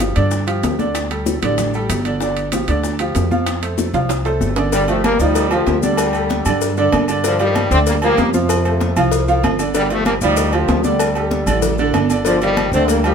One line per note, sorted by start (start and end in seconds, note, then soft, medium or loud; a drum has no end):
0.00 0.10 G1 medium
0.00 0.13 F3 medium
0.00 0.13 F4 medium
0.00 0.13 G4 medium
0.00 high bongo medium
0.00 high conga medium
0.00 high timbale medium
0.00 maracas medium
0.15 0.60 G2 loud
0.15 0.42 D3 medium
0.15 0.42 D4 medium
0.15 0.42 D5 medium
0.15 high bongo soft
0.15 high conga soft
0.15 high timbale medium
0.15 maracas soft
0.31 high bongo medium
0.31 high conga soft
0.31 maracas medium
0.47 0.73 F3 medium
0.47 0.73 F4 medium
0.47 0.73 G4 medium
0.47 high bongo soft
0.47 high conga soft
0.47 high timbale medium
0.47 maracas soft
0.63 1.37 D2 medium
0.63 high bongo soft
0.63 low bongo medium
0.63 high conga medium
0.63 high timbale medium
0.63 low timbale medium
0.63 maracas medium
0.79 1.05 D3 medium
0.79 1.05 D4 medium
0.79 1.05 D5 medium
0.79 high bongo soft
0.79 high conga medium
0.79 maracas soft
0.95 high bongo medium
0.95 high conga soft
0.95 high timbale medium
0.95 maracas medium
1.11 1.37 G3 medium
1.11 1.37 G4 medium
1.11 1.37 A4 medium
1.11 high conga soft
1.11 high timbale medium
1.11 maracas soft
1.26 high bongo medium
1.26 high conga medium
1.26 maracas medium
1.42 1.86 A1 loud
1.42 1.69 D3 medium
1.42 1.69 D4 medium
1.42 1.69 D5 medium
1.42 high bongo soft
1.42 low conga medium
1.42 high timbale loud
1.42 maracas soft
1.58 high bongo medium
1.58 high conga soft
1.58 low conga medium
1.58 high timbale medium
1.58 maracas medium
1.74 2.00 G3 medium
1.74 2.00 G4 medium
1.74 2.00 A4 medium
1.74 high bongo soft
1.74 high conga soft
1.74 maracas soft
1.89 2.63 G1 loud
1.89 high bongo soft
1.89 low bongo medium
1.89 high conga soft
1.89 high timbale loud
1.89 maracas medium
2.05 2.18 D3 medium
2.05 2.19 D4 medium
2.05 2.19 D5 medium
2.05 high bongo soft
2.05 high timbale medium
2.05 maracas soft
2.20 2.47 D3 medium
2.20 2.47 D4 medium
2.20 2.47 D5 medium
2.20 high bongo medium
2.20 high conga soft
2.20 maracas medium
2.37 high conga soft
2.37 high timbale medium
2.37 maracas soft
2.52 2.66 F3 medium
2.52 2.66 F4 medium
2.52 2.66 G4 medium
2.52 high bongo medium
2.52 high conga loud
2.52 high timbale medium
2.52 maracas medium
2.68 3.12 D2 loud
2.68 2.94 D3 medium
2.68 2.94 D4 medium
2.68 2.95 D5 medium
2.68 high bongo soft
2.68 high timbale medium
2.68 maracas soft
2.84 high bongo medium
2.84 high conga soft
2.84 maracas medium
2.99 3.26 F3 medium
2.99 3.26 F4 medium
2.99 3.26 G4 medium
2.99 high bongo soft
2.99 high conga soft
2.99 high timbale medium
2.99 maracas soft
3.15 3.89 F2 medium
3.15 high bongo soft
3.15 low bongo medium
3.15 high conga medium
3.15 high timbale medium
3.15 low timbale medium
3.15 maracas medium
3.31 3.57 F3 medium
3.31 3.57 F4 medium
3.31 3.57 F5 medium
3.31 high bongo soft
3.31 high conga medium
3.31 maracas soft
3.47 high bongo medium
3.47 high conga soft
3.47 high timbale loud
3.47 maracas medium
3.62 3.88 A3 medium
3.62 3.89 A4 medium
3.62 3.89 C5 medium
3.62 high conga soft
3.62 high timbale medium
3.62 maracas soft
3.78 high bongo medium
3.78 high conga medium
3.78 maracas medium
3.93 4.38 C2 medium
3.93 4.20 F3 medium
3.93 4.20 F4 medium
3.93 4.20 F5 medium
3.93 high bongo soft
3.93 low conga medium
3.93 high timbale medium
3.93 maracas soft
4.09 high bongo medium
4.09 high conga soft
4.09 high timbale medium
4.09 maracas medium
4.25 4.51 A3 medium
4.25 4.51 A4 medium
4.25 4.52 C5 medium
4.25 high bongo soft
4.25 high conga soft
4.25 high timbale medium
4.25 maracas soft
4.41 5.14 G1 medium
4.41 high bongo soft
4.41 low bongo medium
4.41 high conga soft
4.41 maracas medium
4.56 4.70 D3 medium
4.56 4.70 D4 medium
4.56 4.71 D5 medium
4.56 high bongo soft
4.56 low timbale medium
4.56 maracas soft
4.72 4.86 D3 medium
4.72 4.88 D3 medium
4.72 4.87 G3 loud
4.72 4.86 D4 medium
4.72 4.86 D5 medium
4.72 cowbell loud
4.72 high conga soft
4.72 low agogo medium
4.72 maracas medium
4.88 5.14 F3 medium
4.88 5.04 F3 medium
4.88 5.03 A3 loud
4.88 5.14 F4 medium
4.88 5.15 G4 medium
4.88 high conga soft
4.88 low agogo medium
4.88 maracas soft
5.04 5.19 G3 medium
5.04 5.19 A#3 loud
5.04 cowbell medium
5.04 high conga medium
5.04 low timbale medium
5.04 low agogo loud
5.04 maracas soft
5.19 5.64 D2 medium
5.19 5.46 F3 loud
5.19 5.51 G3 loud
5.19 5.52 D#4 medium
5.19 5.46 F4 medium
5.19 5.46 D5 medium
5.19 maracas medium
5.35 cowbell loud
5.35 high conga soft
5.35 low agogo medium
5.35 maracas medium
5.51 5.83 D3 medium
5.51 5.83 F3 medium
5.51 5.77 F3 medium
5.51 5.78 F4 medium
5.51 5.78 G4 medium
5.51 high conga soft
5.51 low agogo loud
5.51 maracas soft
5.66 6.40 D2 loud
5.66 cowbell medium
5.66 high conga medium
5.66 low timbale medium
5.66 maracas soft
5.82 6.09 D3 medium
5.82 6.74 D3 medium
5.82 6.73 G3 medium
5.82 6.09 D4 medium
5.82 6.09 D5 medium
5.82 high conga medium
5.82 maracas medium
5.97 cowbell loud
5.97 high conga soft
5.97 low agogo loud
5.97 maracas medium
6.13 6.40 G3 medium
6.13 6.40 G4 medium
6.13 6.41 A4 medium
6.13 low agogo medium
6.13 maracas soft
6.29 cowbell medium
6.29 high conga medium
6.29 low timbale medium
6.29 maracas soft
6.45 6.89 G2 loud
6.45 6.72 D3 medium
6.45 6.72 D4 medium
6.45 6.72 D5 loud
6.45 high conga soft
6.45 low conga medium
6.45 low agogo loud
6.45 maracas medium
6.61 cowbell loud
6.61 high conga soft
6.61 maracas medium
6.77 7.03 D3 loud
6.77 7.03 D4 loud
6.77 7.04 D5 loud
6.77 high conga soft
6.77 maracas soft
6.92 7.66 G2 loud
6.92 cowbell medium
6.92 high conga medium
6.92 low timbale medium
6.92 low agogo loud
6.92 maracas soft
7.08 7.22 D3 medium
7.08 7.22 D4 medium
7.08 7.22 D5 medium
7.08 low agogo medium
7.08 maracas medium
7.24 7.37 D3 medium
7.24 7.40 D3 medium
7.24 7.40 F3 loud
7.24 7.37 D4 medium
7.24 7.37 D5 medium
7.24 cowbell loud
7.24 high conga soft
7.24 low agogo medium
7.24 maracas loud
7.39 7.70 D#3 medium
7.39 7.65 F3 medium
7.39 7.70 G3 loud
7.39 7.66 F4 medium
7.39 7.66 G4 medium
7.39 high conga soft
7.39 low agogo medium
7.39 maracas soft
7.55 cowbell medium
7.55 high conga loud
7.55 low timbale medium
7.55 low agogo loud
7.55 maracas soft
7.71 8.15 D2 loud
7.71 7.97 D3 medium
7.71 7.80 A3 medium
7.71 7.79 C4 loud
7.71 7.97 D4 loud
7.71 7.97 D5 medium
7.71 maracas medium
7.87 7.96 G3 medium
7.87 7.95 A#3 medium
7.87 cowbell loud
7.87 high conga soft
7.87 low agogo medium
7.87 maracas medium
8.02 8.28 F3 medium
8.02 8.33 G3 medium
8.02 8.32 A#3 loud
8.02 8.29 F4 medium
8.02 8.29 G4 medium
8.02 high conga soft
8.02 low agogo loud
8.02 maracas soft
8.17 8.91 F2 loud
8.17 cowbell medium
8.17 high conga medium
8.17 low timbale medium
8.17 maracas soft
8.34 9.25 C3 medium
8.34 9.24 F3 medium
8.34 8.60 F3 medium
8.34 8.60 F4 medium
8.34 8.60 F5 medium
8.34 high conga medium
8.34 maracas medium
8.49 cowbell loud
8.49 high conga soft
8.49 low agogo loud
8.49 maracas medium
8.65 8.91 A3 medium
8.65 8.91 A4 medium
8.65 8.91 C5 medium
8.65 high conga soft
8.65 low agogo medium
8.65 maracas soft
8.80 cowbell medium
8.80 high conga loud
8.80 low timbale medium
8.80 maracas soft
8.96 9.40 C2 loud
8.96 9.23 F3 loud
8.96 9.23 F4 loud
8.96 9.23 F5 loud
8.96 high conga soft
8.96 low conga medium
8.96 low agogo loud
8.96 maracas medium
9.11 cowbell loud
9.11 maracas medium
9.28 9.54 F3 loud
9.28 9.54 F4 loud
9.28 9.54 F5 loud
9.28 high conga soft
9.28 maracas soft
9.43 10.16 G1 medium
9.43 cowbell medium
9.43 high conga medium
9.43 low timbale medium
9.43 low agogo loud
9.43 maracas soft
9.59 9.72 D3 medium
9.59 9.72 D4 medium
9.59 9.73 D5 medium
9.59 low agogo medium
9.59 maracas medium
9.74 9.88 D3 medium
9.74 9.90 D3 medium
9.74 9.90 G3 loud
9.74 9.88 D4 medium
9.74 9.88 D5 medium
9.74 cowbell loud
9.74 high conga soft
9.74 low agogo medium
9.74 maracas medium
9.90 10.16 F3 medium
9.90 10.07 F3 medium
9.90 10.07 A3 loud
9.90 10.16 F4 medium
9.90 10.17 G4 medium
9.90 high conga soft
9.90 low agogo medium
9.90 maracas soft
10.05 10.14 G3 medium
10.05 10.14 A#3 loud
10.05 cowbell medium
10.05 high conga medium
10.05 low timbale medium
10.05 low agogo loud
10.05 maracas soft
10.21 10.65 D2 loud
10.21 10.48 F3 loud
10.21 10.52 G3 loud
10.21 10.52 D#4 medium
10.21 10.48 F4 medium
10.21 10.48 D5 loud
10.21 maracas medium
10.37 cowbell medium
10.37 high conga soft
10.37 low agogo medium
10.37 maracas medium
10.52 10.84 D3 medium
10.52 10.79 F3 medium
10.52 10.85 F3 medium
10.52 10.79 F4 medium
10.52 10.79 G4 medium
10.52 high conga soft
10.52 low agogo loud
10.52 maracas soft
10.68 11.42 D2 loud
10.68 cowbell medium
10.68 high conga medium
10.68 low timbale loud
10.68 maracas soft
10.84 11.10 D3 medium
10.84 11.79 D3 medium
10.84 11.79 G3 medium
10.84 11.10 D4 medium
10.84 11.10 D5 medium
10.84 high conga medium
10.84 maracas medium
10.99 cowbell loud
10.99 high conga soft
10.99 low agogo loud
10.99 maracas medium
11.15 11.42 G3 medium
11.15 11.42 G4 medium
11.15 11.42 A4 medium
11.15 high conga soft
11.15 low agogo medium
11.15 maracas soft
11.31 cowbell medium
11.31 high conga medium
11.31 low timbale medium
11.31 maracas soft
11.46 11.91 A1 loud
11.46 11.73 D3 medium
11.46 11.74 D4 loud
11.46 11.74 D5 medium
11.46 high conga soft
11.46 low conga medium
11.46 low agogo loud
11.46 maracas medium
11.62 cowbell loud
11.62 high conga soft
11.62 low conga medium
11.62 maracas loud
11.78 12.05 D3 loud
11.78 12.05 D4 loud
11.78 12.05 D5 loud
11.78 high conga soft
11.78 maracas soft
11.94 12.67 G1 loud
11.94 cowbell medium
11.94 high conga medium
11.94 low timbale medium
11.94 low agogo loud
11.94 maracas soft
12.10 12.23 D3 medium
12.10 12.24 D4 medium
12.10 12.24 D5 medium
12.10 low agogo medium
12.10 maracas medium
12.25 12.39 D3 medium
12.25 12.41 D3 medium
12.25 12.40 F3 loud
12.25 12.39 D4 medium
12.25 12.39 D5 medium
12.25 cowbell loud
12.25 high conga soft
12.25 low agogo medium
12.25 maracas loud
12.41 12.71 D#3 medium
12.41 12.67 F3 medium
12.41 12.71 G3 loud
12.41 12.67 F4 medium
12.41 12.68 G4 medium
12.41 high conga soft
12.41 low agogo medium
12.41 maracas soft
12.57 cowbell medium
12.57 high conga medium
12.57 low timbale medium
12.57 low agogo medium
12.57 maracas soft
12.72 13.14 D2 loud
12.72 12.99 D3 loud
12.72 12.88 A3 medium
12.72 12.87 C4 loud
12.72 13.00 D4 loud
12.72 13.00 D5 loud
12.72 maracas medium
12.88 13.02 G3 medium
12.88 13.04 A#3 loud
12.88 cowbell loud
12.88 high conga soft
12.88 low agogo medium
12.88 maracas medium
13.04 13.14 D#3 medium
13.04 13.14 F3 medium
13.04 13.14 G3 medium
13.04 13.14 F4 loud
13.04 13.14 G4 loud
13.04 high conga soft
13.04 low agogo loud
13.04 maracas soft